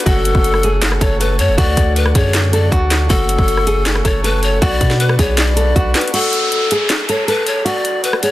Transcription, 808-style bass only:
0.06 F#1
0.35 F#1
1.01 F#1
1.39 F#2
1.49 F#1
1.58 D2
1.77 D2
2.15 F#2
2.72 D2
3.10 F#1
3.39 F#1
4.05 F#1
4.62 B1
4.81 B2
5.19 B1
5.76 B1

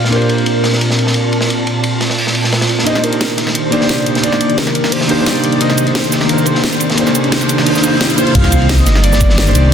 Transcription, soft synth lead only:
Already playing: F5
0.12 A#4
2.87 D#5
3.04 A#4
3.55 C5
3.72 D5
4.24 D5
4.58 A#4
4.92 C5
5.26 D5
5.61 D#5
5.87 C5
6.12 G4
6.29 A#4
6.47 C5
8.18 C5
8.35 F5
8.69 D#5
9.04 D5
9.38 D5

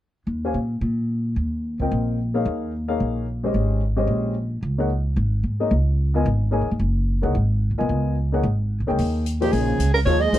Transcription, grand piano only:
0.45 C#4 G4 C5 F5 G#5
1.80 C4 F4 A#4 D#5 G5
2.34 A#3 D#4 G#4 C#5 F5
2.88 A#3 D#4 G#4 C#5 F5
3.44 G#3 C#4 G4 C5 D#5
3.97 G#3 C#4 G4 C5 D#5
4.78 A#3 D#4 G#4 C#5 F#5
5.60 A#3 D#4 G#4 C#5 D#5
6.14 B3 F4 A#4 D#5 G#5
6.51 A#3 D#4 G#4 C#5 G#5
7.22 A#3 D#4 G#4 C#5 F#5
7.78 B3 F4 A#4 D#5 G#5
8.32 A#3 D#4 G#4 C#5 F#5
8.87 A#3 D#4 G#4 C#5 G5
9.41 F3 A#3 D#4 G#4 C5
10.06 F3 A#3 D#4 G#4 C5
10.33 F3 A#3 D#4 G#4 C5

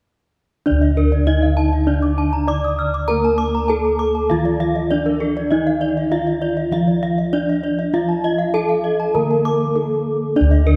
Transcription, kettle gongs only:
0.66 D4
0.71 D2
1.27 D#4
2.48 D#4
3.10 A#4
3.70 D#4
4.30 D#3
4.91 D#4
5.52 D#4
6.11 D#4
6.72 F3
7.33 D#4
7.94 F4
8.54 D#4
9.15 D3
9.75 D#4
10.36 D4
10.41 D2

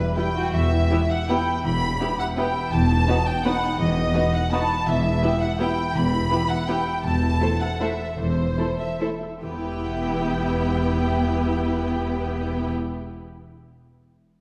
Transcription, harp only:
Already playing: E3 G3 E4 G4 B4
0.17 B4
0.36 E4
0.54 E3
0.72 E4
0.91 G4
1.10 E5
1.29 B5
1.47 E5
1.65 E3
1.82 E4
2.00 G4
2.19 E5
2.38 B5
2.56 E5
2.73 E3
2.90 D#4
3.08 F#4
3.27 D#5
3.45 B5
3.63 D#5
3.79 E3
3.96 D#4
4.15 F#4
4.33 D#5
4.52 B5
4.70 D#5
4.87 E3
5.04 E4
5.23 G4
5.41 E5
5.60 B5
5.78 E5
5.95 E3
6.12 E4
6.31 G4
6.50 E5
6.68 B5
6.86 E5
7.04 E3
7.22 E4
7.41 A4
7.61 E5
7.80 C6
8.00 E5
8.18 E3
8.37 E4
8.58 A4
8.79 E5
9.01 C6
9.22 E5
9.43 E3
9.51 B3
9.58 E4
9.64 B4
9.71 E5

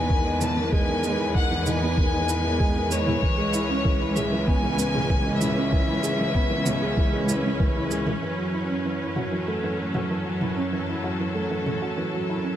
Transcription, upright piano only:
Already playing: D#3 E3 G#3 B3 D#4 E4
0.10 D#3
0.26 D#4
0.42 E4
0.57 D#3
0.72 G#3
0.88 D#3
1.04 G#3
1.19 E4
1.35 D#3
1.51 E3
1.67 D#4
1.82 B3
1.98 D#3
2.13 D#4
2.29 E4
2.45 D#3
2.60 G#3
2.76 D#3
2.91 G#3
3.07 E4
3.22 E3
3.38 G#3
3.54 E4
3.70 C#4
3.85 E3
4.01 E4
4.16 G#4
4.32 E3
4.47 B3
4.63 E3
4.79 B3
4.94 G#4
5.10 E3
5.26 G#3
5.41 E4
5.57 C#4
5.72 E3
5.88 E4
6.03 G#4
6.19 E3
6.35 B3
6.50 E3
6.66 B3
6.82 G#4
6.98 E3
7.13 G#3
7.29 E4
7.44 C#4
7.60 E3
7.76 E4
7.91 G#4
8.07 E3
8.22 E3
8.38 F#3
8.54 E4
8.70 C#4
8.85 E3
9.01 E4
9.16 F#4
9.32 E3
9.48 A3
9.64 E3
9.79 A3
9.95 F#4
10.11 E3
10.26 F#3
10.41 E4
10.57 C#4
10.73 E3
10.89 E4
11.04 F#4
11.20 E3
11.35 A3
11.51 E3
11.66 A3
11.82 F#4
11.98 E3
12.13 F#3
12.29 E4
12.44 C#4

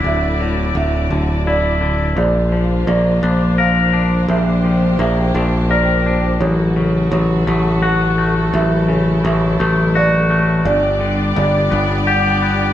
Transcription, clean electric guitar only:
Already playing: A2 D3 E4
0.05 D2
0.40 A2
0.76 A2
1.11 D3
1.47 E4
1.81 D3
2.17 A#2
2.52 F3
2.87 A#3
3.23 D4
3.58 A#4
3.93 D4
4.29 A#2
4.64 F3
4.99 A#3
5.35 D4
5.71 A#4
6.06 D4
6.41 F#2
6.76 C#3
7.13 F#3
7.47 A3
7.82 F#4
8.18 A3
8.53 F#2
8.88 C#3
9.24 F#3
9.60 A3
9.95 F#4
10.30 A3
10.65 G2
11.00 D3
11.36 G3
11.71 B3
12.07 G4
12.42 B3

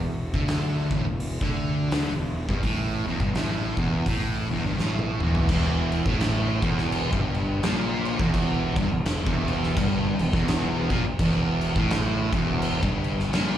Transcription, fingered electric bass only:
Already playing: E1
0.33 D2
0.91 A1
1.04 E1
1.41 D2
1.91 D2
2.12 E1
2.48 G1
2.63 A1
3.04 E1
3.20 G1
3.34 A1
3.77 E1
4.06 A1
4.47 E1
4.62 G1
4.76 A1
5.18 E1
5.49 E1
6.05 A1
6.62 E1
7.12 G1
7.62 A#1
8.19 E1
8.76 G1
8.90 E1
9.26 E1
9.77 G1
10.18 E1
10.33 E1
10.90 A#1
11.04 muted fingered electric bass stroke
11.19 E1
11.75 A1
12.32 E1
12.82 G1
13.33 A#1

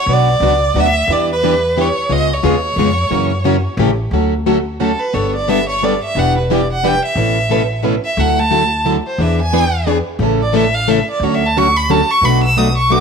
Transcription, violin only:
Already playing: C#5
0.13 D5
0.80 E5
1.12 D5
1.32 B4
1.81 C#5
2.12 D#5
2.33 C#5
4.81 A4
5.00 B4
5.14 C#5
5.35 D5
5.49 E5
5.69 C#5
5.84 D5
6.04 E5
6.19 F#5
6.38 B4
6.52 D5
6.73 F#5
6.86 G5
7.05 E5
8.05 E5
8.20 F#5
8.39 A5
9.07 C5
9.21 E5
9.42 G#5
10.42 D5
10.55 E5
10.74 F5
10.90 E5
11.11 D5
11.23 C#5
11.34 E5
11.46 A5
11.58 C#6
11.76 B5
11.91 A5
12.10 C#6
12.25 B5
12.44 E6
12.58 D#6
12.78 C#6
12.92 D6

